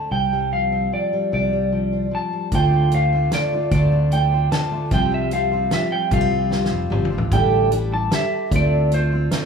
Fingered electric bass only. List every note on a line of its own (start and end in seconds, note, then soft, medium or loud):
0.11 0.88 C2 medium
1.33 2.09 C2 medium
2.52 3.28 D2 medium
3.71 4.48 D2 loud
4.91 5.68 C2 loud
6.12 6.68 C2 loud
6.71 6.90 F1 medium
6.91 7.09 G1 medium
7.12 7.30 A1 medium
7.32 8.08 A1 medium
8.51 9.27 D2 medium